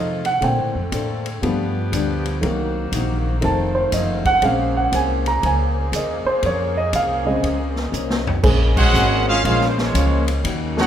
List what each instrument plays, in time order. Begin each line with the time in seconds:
Already playing: upright bass C3, saxophone section D#3 A3 C4 F4, steel-string acoustic guitar F3 D#4 A4 C5, grand piano D#5
0.25 grand piano F#5, ride
0.41 upright bass A#2, grand piano D3 A3 C4 G5, saxophone section D3 A3 A4, steel-string acoustic guitar A#3 D4 A4, kick, ride
0.45 steel-string acoustic guitar C5
0.58 upright bass A2
0.75 upright bass F2
0.92 upright bass A2, steel-string acoustic guitar A#3 D4 A4 C5, kick, hi-hat pedal, ride
1.26 ride
1.41 upright bass G2, grand piano F3 A3 B3, saxophone section F3 B3 D4 G4, steel-string acoustic guitar G3 D4 F4 B4, kick, ride
1.92 upright bass D2, steel-string acoustic guitar G3 D4 F4 B4, kick, hi-hat pedal, ride
2.25 ride
2.40 upright bass C2, steel-string acoustic guitar C3, saxophone section D#3 A#3 F#4 C5, grand piano D#3 F#3 A#3, kick, ride
2.45 steel-string acoustic guitar A#3 D#4 F#4
2.92 upright bass A#1, steel-string acoustic guitar C3 A#3 D#4 F#4, kick, hi-hat pedal, ride
3.40 upright bass F1, grand piano D#3 A3 C4, steel-string acoustic guitar F3, saxophone section A3 F4, kick, ride
3.45 steel-string acoustic guitar D#4 A4 C5, grand piano A5
3.75 grand piano C5
3.92 upright bass F#1, steel-string acoustic guitar F3 D#4 A4 C5, grand piano D#5, kick, hi-hat pedal, ride
4.25 grand piano F#5, kick, ride
4.41 upright bass A#1, saxophone section A#2 A#3 G#4, grand piano G#3 C4 C#4 F5, steel-string acoustic guitar A#3 C#4 G#4 C5, kick, ride
4.77 grand piano F#5
4.92 upright bass C2, steel-string acoustic guitar A#3 C#4 G#4 C5, grand piano G#5, kick, hi-hat pedal, ride
5.26 grand piano A#5, ride
5.41 upright bass C#2, steel-string acoustic guitar A#3 C#4 G#4 C5, kick, ride
5.46 grand piano G#5
5.92 upright bass D#2, steel-string acoustic guitar A#3 C#4 G#4 C5, kick, hi-hat pedal, ride
5.96 grand piano D#5
6.25 grand piano C5, muted upright bass stroke
6.42 upright bass F2, steel-string acoustic guitar A#3 C#4 G#4 C5, grand piano C#5, kick, ride
6.78 grand piano D#5
6.93 upright bass C2, steel-string acoustic guitar A#3 C#4 G#4 C5, grand piano F5, kick, hi-hat pedal, ride
7.25 grand piano C#3 G#3 C4 D#5
7.43 upright bass C#2, steel-string acoustic guitar A#3 C#4 G#4 C5, kick, ride
7.76 snare
7.92 upright bass C2, steel-string acoustic guitar A#3 C#4 G#4 C5, hi-hat pedal
8.10 snare
8.27 floor tom
8.43 upright bass A#1, saxophone section C#3 G#3 A#3, grand piano G#3 A#3 C#4 G#4 C5, steel-string acoustic guitar A#3 C#4 G#4 C5, kick, crash
8.77 trombone section G#3 C#4 F#4, trumpet section C#4 G#4 C5 F#5, kick, crash
8.93 upright bass G#1, steel-string acoustic guitar A#3 C#4 G#4 C5, hi-hat pedal
9.28 trombone section G#3 C#4 F4, trumpet section C#4 G#4 C5 F5
9.44 upright bass A#1, trombone section G#3 C#4 F4, steel-string acoustic guitar A#3 C#4 G#4 C5, trumpet section C#4 G#4 C5 F5, kick, ride
9.61 snare
9.69 trumpet section C5
9.77 trombone section F3 G#3 C#4, trumpet section G#3 F4 C5 C#5, snare
9.94 upright bass C#2, steel-string acoustic guitar A#3 C#4 G#4 C5, kick, hi-hat pedal, ride
10.28 ride
10.43 upright bass D#2, saxophone section C#3 F#3 A#3 D#4, steel-string acoustic guitar D#3 A#3 C#4 F#4, kick, ride
10.77 grand piano F3 A#3 C#4 D#4 F#4, trombone section A#3 C#4 F#4, trumpet section D#4 A#4 C#5 F#5, snare